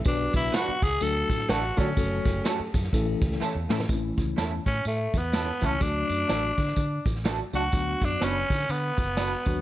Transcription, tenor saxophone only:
0.07 0.33 D4 medium
0.36 0.57 E4 loud
0.55 0.85 F#4 loud
0.83 1.03 G#4 loud
1.02 1.51 A4 loud
1.49 1.79 F#4 loud
1.78 2.45 C#4 medium
4.67 4.84 C#4 medium
4.87 5.19 A3 medium
5.18 5.67 B3 medium
5.66 5.83 C#4 medium
5.82 7.06 D4 loud
7.56 8.06 F#4 loud
8.04 8.25 D4 loud
8.24 8.73 C#4 loud
8.71 9.61 B3 loud

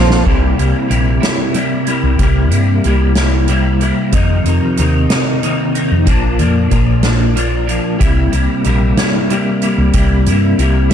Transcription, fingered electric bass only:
0.00 0.25 A#1 loud
0.27 0.53 C2 medium
0.59 0.73 C2 medium
0.90 1.17 A#1 medium
2.03 2.17 C2 medium
2.20 2.52 C2 medium
2.52 2.79 G2 medium
2.85 3.91 C2 medium
4.13 4.40 F2 medium
4.45 4.59 F2 medium
4.79 5.05 D#2 medium
5.92 6.05 F2 medium
6.07 6.41 A#1 medium
6.40 6.66 F2 medium
6.72 7.78 A#1 medium
8.00 8.27 C2 medium
8.33 8.47 C2 medium
8.66 8.92 A#1 medium
9.78 9.92 C2 medium
9.94 10.28 C2 medium
10.26 10.53 G2 medium
10.58 10.94 C2 medium

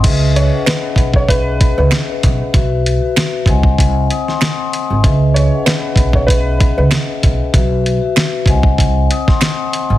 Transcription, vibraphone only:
0.00 0.40 C#4 medium
0.00 0.40 G#4 medium
0.00 0.41 B4 medium
0.00 0.20 G#5 medium
0.04 0.41 D#5 medium
0.04 0.41 E5 loud
0.51 1.12 C#4 medium
0.51 1.12 G#4 medium
0.51 1.13 B4 medium
0.51 1.13 D#5 medium
0.51 1.14 F#5 medium
1.27 2.25 C#4 medium
1.27 2.26 G#4 medium
1.27 2.27 D#5 medium
1.27 2.27 E5 medium
2.53 2.90 F#4 loud
2.53 2.91 B4 medium
2.53 2.92 E5 loud
3.02 3.47 F#4 medium
3.02 3.48 B4 medium
3.02 3.49 E5 medium
3.46 4.48 C4 loud
3.46 4.48 C5 loud
3.46 4.10 D#5 medium
3.46 4.10 F#5 medium
3.46 4.10 G#5 loud
4.11 4.27 G#5 medium
4.11 4.27 D#6 medium
4.28 4.41 F#5 medium
4.28 4.41 C6 medium
4.40 4.58 G#5 medium
4.40 4.57 D#6 medium
4.58 4.88 F#5 medium
4.58 4.88 C6 medium
4.91 5.03 D#5 medium
4.91 5.20 G#5 medium
5.02 5.40 C#4 medium
5.02 5.40 G#4 medium
5.02 5.41 B4 medium
5.02 5.41 D#5 medium
5.02 5.41 E5 loud
5.51 6.12 C#4 medium
5.51 6.12 G#4 medium
5.51 6.13 B4 medium
5.51 6.13 D#5 medium
5.51 6.14 F#5 medium
6.27 7.25 C#4 medium
6.27 7.26 G#4 medium
6.27 7.26 D#5 medium
6.27 7.27 E5 medium
7.53 7.90 F#4 medium
7.53 7.91 B4 medium
7.53 7.92 E5 loud
8.02 8.47 F#4 medium
8.02 8.48 B4 medium
8.02 8.48 E5 medium
8.46 9.48 C4 loud
8.46 9.48 C5 loud
8.46 9.10 D#5 medium
8.46 9.10 F#5 medium
8.46 9.10 G#5 loud
9.11 9.27 G#5 medium
9.11 9.27 D#6 medium
9.28 9.41 C6 medium
9.40 9.57 D#6 medium
9.58 9.88 F#5 medium
9.58 9.88 C6 medium
9.91 9.98 D#5 medium
9.91 9.98 G#5 medium

